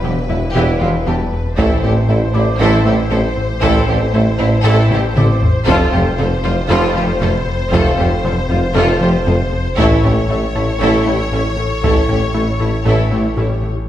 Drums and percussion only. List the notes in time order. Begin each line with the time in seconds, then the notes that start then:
1.58 taiko
3.63 taiko
4.91 taiko low-mid
5.17 taiko mid
5.43 taiko low
5.68 taiko
7.72 taiko
9.78 taiko
10.56 taiko rim
11.84 taiko